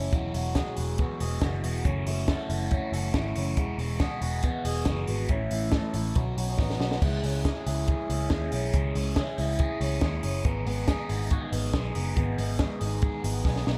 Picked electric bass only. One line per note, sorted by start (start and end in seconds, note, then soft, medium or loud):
0.00 0.13 F#1 medium
0.13 0.30 E1 medium
0.35 0.61 E1 medium
0.78 1.04 E1 medium
1.21 1.38 E1 medium
1.42 1.60 F#1 medium
1.63 1.81 E1 medium
1.85 2.03 F#1 medium
2.07 2.33 F#1 medium
2.50 2.76 F#1 medium
2.92 3.10 F#1 medium
3.14 3.32 G#1 medium
3.36 3.58 F#1 medium
3.58 3.75 E1 medium
3.78 4.05 E1 medium
4.21 4.48 E1 medium
4.65 4.83 E1 medium
4.86 5.04 F#1 medium
5.08 5.26 G#1 medium
5.29 5.47 A1 loud
5.51 5.78 A1 medium
5.94 6.12 A1 medium
6.16 6.34 B1 medium
6.37 6.55 B1 medium
6.59 6.76 A1 medium
6.79 6.97 B1 medium
7.02 7.19 C#2 loud
7.24 7.50 C#2 medium
7.67 7.93 C#2 medium
8.10 8.27 C#2 medium
8.31 8.48 D#2 medium
8.52 8.70 B1 medium
8.74 8.91 C#2 loud
8.96 9.22 C#2 medium
9.38 9.65 C#2 medium
9.81 9.98 C#2 medium
10.02 10.20 D#2 medium
10.24 10.41 F#1 medium
10.45 10.63 G#1 loud
10.66 10.93 G#1 medium
11.10 11.36 G#1 medium
11.52 11.70 G#1 medium
11.74 11.91 B1 medium
11.96 12.13 F#1 medium
12.17 12.34 G#1 medium
12.38 12.65 G#1 medium
12.82 13.08 G#1 medium
13.24 13.42 G#1 medium
13.45 13.63 B1 medium
13.67 13.78 B1 medium